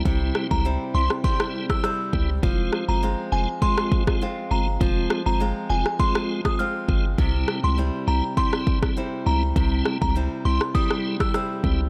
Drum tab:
SD |--r----r-r-rr---|--r------r-r----|--r----r-r-r----|--r------r-r----|
BD |o--o----o--o--o-|o-------o-oo----|o-------o--o--o-|o-------o-oo----|

SD |--r----r-r-rr---|
BD |o--o----o--o--o-|